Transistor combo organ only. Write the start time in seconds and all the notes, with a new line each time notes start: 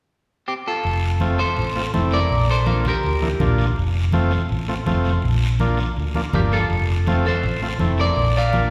1.21 A3 C4 F4
1.76 A3 C4 F4
1.94 A3 C4 E4
2.66 A#3 D4 F4
3.22 A#3 D4 E4
3.40 A#3 D4 F4
4.13 A3 C4 F4
4.68 A3 C4 F4
4.86 A3 C4 F4
5.60 A#3 D4 F4
6.15 A#3 D4 F4
6.34 A#3 D4 F4
7.07 A3 C4 F4
7.62 A3 C4 F4
7.80 A3 C4 E4
8.53 A#3 D4 F4